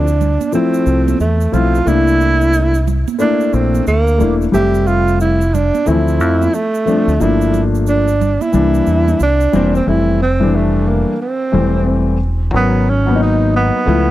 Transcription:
0.00 0.37 D2 loud
0.00 0.50 D4 medium
0.08 shaker medium
0.21 low conga medium
0.21 shaker soft
0.41 high conga medium
0.41 shaker soft
0.52 1.16 F3 medium
0.52 1.16 A3 medium
0.52 1.17 C4 medium
0.52 1.17 E4 medium
0.52 shaker medium
0.74 shaker soft
0.86 1.13 C2 medium
0.86 shaker soft
1.08 high conga medium
1.08 shaker soft
1.20 1.46 E2 medium
1.20 1.55 A3 medium
1.20 shaker medium
1.41 shaker medium
1.52 1.80 B1 medium
1.52 1.76 F3 medium
1.52 1.77 A3 medium
1.52 1.77 C4 medium
1.52 1.78 E4 medium
1.52 1.89 F4 medium
1.52 low conga medium
1.52 shaker soft
1.75 shaker soft
1.86 3.03 C2 loud
1.86 2.72 A3 medium
1.86 2.72 A#3 medium
1.86 2.73 D4 medium
1.86 2.95 E4 loud
1.86 2.73 E4 medium
1.86 shaker medium
2.08 shaker soft
2.21 shaker soft
2.41 shaker soft
2.53 shaker medium
2.74 shaker medium
2.88 low conga medium
2.88 shaker soft
3.08 high conga medium
3.08 shaker soft
3.19 3.82 A3 medium
3.19 3.83 A#3 medium
3.19 3.55 D4 medium
3.19 3.83 D4 medium
3.19 3.84 E4 medium
3.19 shaker medium
3.40 shaker medium
3.53 3.80 A#1 loud
3.53 3.87 C4 medium
3.53 shaker soft
3.75 high conga medium
3.75 shaker soft
3.87 4.22 D2 loud
3.87 4.37 A#3 loud
3.87 shaker medium
4.07 shaker soft
4.18 4.46 E1 medium
4.18 4.43 A3 medium
4.18 4.43 A#3 medium
4.18 4.44 D4 medium
4.18 4.44 E4 medium
4.18 low conga medium
4.18 shaker soft
4.42 shaker soft
4.52 5.70 F1 loud
4.52 5.38 G3 medium
4.52 5.39 A3 medium
4.52 5.39 C4 medium
4.52 4.89 G4 loud
4.52 5.40 E5 medium
4.52 shaker medium
4.75 shaker soft
4.87 5.21 F4 loud
4.87 shaker soft
5.08 shaker soft
5.20 5.56 E4 medium
5.20 shaker medium
5.41 shaker medium
5.54 5.89 D4 medium
5.54 low conga medium
5.54 shaker medium
5.75 high conga medium
5.75 shaker soft
5.86 6.21 D2 medium
5.86 5.94 E3 medium
5.86 6.50 A3 medium
5.86 6.50 C4 medium
5.86 6.56 E4 loud
5.86 6.51 E4 medium
5.86 shaker medium
5.92 6.52 F3 medium
6.08 shaker soft
6.20 6.47 F2 medium
6.20 shaker soft
6.42 high conga medium
6.42 shaker soft
6.54 7.23 A3 medium
6.54 shaker medium
6.74 shaker soft
6.85 7.10 F3 medium
6.85 7.10 A3 medium
6.85 7.11 C4 medium
6.85 7.11 D4 medium
6.85 low conga medium
6.85 shaker soft
7.08 7.18 D2 medium
7.08 shaker soft
7.19 8.37 G1 loud
7.19 8.05 F3 medium
7.19 8.06 A3 medium
7.19 8.06 A#3 medium
7.19 8.07 D4 medium
7.19 7.62 E4 medium
7.19 shaker medium
7.41 shaker soft
7.54 low conga medium
7.54 shaker soft
7.75 shaker soft
7.87 8.43 D4 medium
7.87 shaker medium
8.08 shaker medium
8.21 low conga medium
8.21 shaker soft
8.41 9.21 E4 medium
8.41 high conga medium
8.41 shaker medium
8.52 8.80 C2 loud
8.52 9.16 E3 medium
8.52 9.16 G3 medium
8.52 9.17 A#3 medium
8.52 9.17 D4 medium
8.52 shaker medium
8.74 shaker soft
8.86 9.13 E2 medium
8.86 shaker soft
9.08 high conga medium
9.08 shaker soft
9.20 9.46 C2 medium
9.20 9.72 D4 loud
9.20 shaker medium
9.41 shaker soft
9.52 9.80 E1 medium
9.52 9.76 E3 medium
9.52 9.77 G3 medium
9.52 9.77 A#3 medium
9.52 9.78 C4 loud
9.52 low conga medium
9.52 shaker soft
9.75 9.90 C4 medium
9.75 high conga soft
9.75 shaker soft
9.86 11.04 F1 loud
9.86 10.18 E3 medium
9.86 10.18 G3 medium
9.86 10.19 A3 medium
9.86 10.19 C4 medium
9.86 10.21 E4 loud
10.22 10.57 C4 medium
10.40 11.11 E3 medium
10.40 11.11 G3 medium
10.40 11.12 A3 medium
10.40 11.12 D4 medium
10.55 10.90 A3 medium
10.88 11.21 A#3 medium
11.22 12.17 C4 medium
11.52 12.50 E1 medium
11.52 12.16 E3 medium
11.52 12.16 G3 medium
11.52 12.16 A3 medium
11.52 12.17 C4 medium
12.52 13.70 G#1 loud
12.52 12.84 F#3 medium
12.52 12.85 B3 medium
12.52 12.91 B3 medium
12.52 12.86 C#4 medium
12.52 12.85 A#4 medium
12.90 13.22 C#4 medium
13.06 13.77 F#3 medium
13.06 13.78 A#3 medium
13.06 13.78 B3 medium
13.06 13.13 C#4 medium
13.16 13.82 D#4 medium
13.23 13.53 D#4 medium
13.56 14.11 B3 medium
13.86 14.11 C#2 loud
13.86 14.11 F3 medium
13.86 14.11 A3 medium
13.86 14.11 B3 medium
13.86 14.11 E4 medium

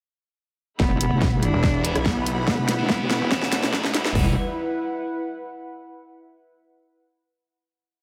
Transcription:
0.80 1.10 E1 medium
0.80 1.35 B3 loud
0.80 4.14 E4 medium
0.80 4.12 E4 medium
0.80 4.12 G4 medium
0.80 4.12 F#5 medium
0.80 4.12 B5 medium
0.80 kick medium
0.80 snare soft
0.80 riser medium
1.01 closed hi-hat medium
1.12 1.52 E1 loud
1.12 4.15 B4 medium
1.22 kick loud
1.22 snare medium
1.40 1.98 D4 loud
1.40 4.15 F#5 medium
1.40 open hi-hat medium
1.53 1.94 E1 loud
1.64 kick loud
1.64 snare medium
1.84 1.93 E3 medium
1.84 1.93 B3 medium
1.84 1.93 E4 medium
1.84 closed hi-hat medium
1.96 2.15 B1 loud
1.96 cross-stick medium
1.96 closed hi-hat soft
2.06 2.42 B3 medium
2.06 kick medium
2.06 snare medium
2.16 2.57 B1 loud
2.26 open hi-hat loud
2.48 2.84 B3 medium
2.48 kick loud
2.48 snare medium
2.58 3.20 E1 loud
2.69 snare medium
2.69 closed hi-hat medium
2.79 4.14 E3 medium
2.79 4.14 B3 medium
2.79 4.14 E4 loud
2.89 3.44 B3 loud
2.89 kick loud
2.89 snare medium
3.10 snare medium
3.10 open hi-hat medium
3.21 3.62 E1 loud
3.31 kick loud
3.31 snare medium
3.42 snare medium
3.52 4.07 A3 loud
3.52 snare loud
3.52 closed hi-hat medium
3.63 3.83 B1 loud
3.63 snare medium
3.63 closed hi-hat soft
3.73 kick loud
3.73 snare loud
3.84 4.14 E1 medium
3.84 snare medium
3.94 snare loud
3.94 open hi-hat loud
4.05 snare loud
4.15 4.35 E1 medium
4.15 4.31 E3 loud
4.15 4.35 E3 medium
4.15 4.31 G3 medium
4.15 4.31 B3 medium
4.15 5.79 E4 medium
4.15 4.35 E4 medium
4.15 4.31 E4 medium
4.15 4.35 G4 medium
4.15 4.35 B4 medium
4.15 4.35 F#5 medium
4.15 kick loud
4.15 floor tom loud
4.15 open hi-hat medium
4.22 5.79 B4 medium
4.28 5.79 F#5 medium

